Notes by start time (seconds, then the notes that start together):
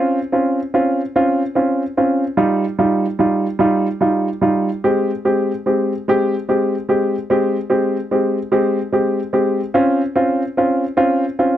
Already playing: C4 C#4 F4
0.32 C4 C#4 F4
0.74 C4 C#4 F4
1.16 C4 C#4 F4
1.55 C4 C#4 F4
1.97 C4 C#4 F4
2.37 G3 D#4 F4
2.79 G3 D#4 F4
3.19 G3 D#4 F4
3.59 G3 D#4 F4
4.01 G3 D#4 F4
4.42 G3 D#4 F4
4.84 G#3 C4 G4
5.25 G#3 C4 G4
5.66 G#3 C4 G4
6.08 G#3 C4 G4
6.49 G#3 C4 G4
6.89 G#3 C4 G4
7.30 G#3 C4 G4
7.70 G#3 C4 G4
8.11 G#3 C4 G4
8.52 G#3 C4 G4
8.93 G#3 C4 G4
9.33 G#3 C4 G4
9.74 C4 C#4 F4
10.16 C4 C#4 F4
10.57 C4 C#4 F4
10.97 C4 C#4 F4
11.39 C4 C#4 F4